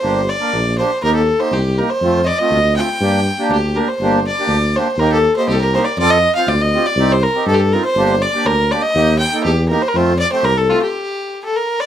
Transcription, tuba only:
\new Staff \with { instrumentName = "Tuba" } { \clef bass \time 2/4 \key g \minor \tempo 4 = 121 g,,4 bes,,4 | ees,4 c,4 | f,4 d,4 | g,4 d,4 |
g,,4 d,4 | ees,4 c,4 | f,4 d,4 | c,4 g,4 |
g,,4 d,4 | ees,4 e,4 | f,4 c,4 | r2 | }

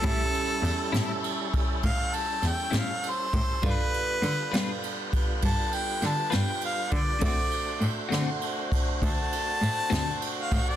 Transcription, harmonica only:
\new Staff \with { instrumentName = "Harmonica" } { \time 12/8 \key a \dorian \tempo 4. = 67 a'2~ a'8 r8 f''8 a''8 g''8 f''8 c''4 | b'2 r4 a''8 g''8 a''8 g''8 f''8 d''8 | d''4 r2 a''2~ a''16 f''8 d''16 | }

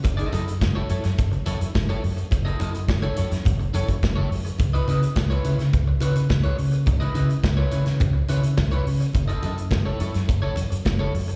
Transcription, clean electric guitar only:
\new Staff \with { instrumentName = "Clean electric guitar" } { \time 4/4 \key fis \dorian \tempo 4 = 106 r16 <e' a' dis''>16 <e' a' dis''>16 r8 <e' a' cis''>16 <e' a' cis''>16 r8. <e' a' cis''>8 r16 <e' a' cis''>8 r16 | r16 <e' a' dis''>16 <e' a' dis''>16 r8 <e' a' cis''>16 <e' a' cis''>16 r8. <e' a' cis''>8 r16 <e' a' cis''>8 r16 | r16 <e' b' dis''>16 <e' b' dis''>16 r8 <e' b' cis''>16 <e' b' cis''>16 r8. <e' b' cis''>8 r16 <e' b' cis''>8 r16 | r16 <e' b' dis''>16 <e' b' dis''>16 r8 <e' b' cis''>16 <e' b' cis''>16 r8. <e' b' cis''>8 r16 <e' b' cis''>8 r16 |
r16 <e' a' dis''>16 <e' a' dis''>16 r8 <e' a' cis''>16 <e' a' cis''>16 r8 <e' a' cis''>8 r8 <e' a' cis''>8 r16 | }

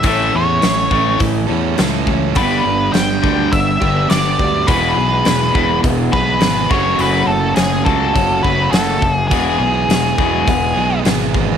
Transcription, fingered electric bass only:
\new Staff \with { instrumentName = "Fingered electric bass" } { \clef bass \time 4/4 \key e \mixolydian \tempo 4 = 103 a,,8 e,8 a,,8 a,,8 a,,8 e,8 cis,4 | g,,8 g,,8 g,,8 d,8 g,,8 g,,8 g,,8 d,8 | e,,8 b,,8 e,,8 e,,8 e,,8 b,,8 gis,,8 fis,,8 | fis,,8 fis,,8 fis,,8 cis,8 fis,,8 fis,,8 fis,,8 fis,,8 |
e,,8 b,,8 e,,8 e,,8 e,,8 b,,8 gis,,4 | }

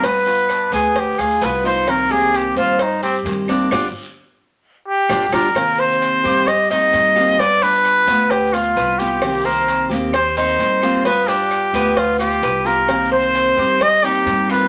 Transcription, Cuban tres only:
\new Staff \with { instrumentName = "Cuban tres" } { \time 4/4 \key c \minor \tempo 4 = 131 b4 d'8 b4 f'8 b8 ees'8~ | ees'8 g'4 c''4 g'4 d'8 | <d' f' g'>8 r2 r8 <d' f' g'>8 <d' f' g'>8 | r8 c''4 g'4 ees'4 f'8 |
b8 d'4 b4 f'8 b'8 g'8~ | g'8 c''4 g'4 ees'4 f'8 | b8 d'4 b4 f'8 b'8 g'8~ | g'8 c''4 g'4 ees'4 f'8 | }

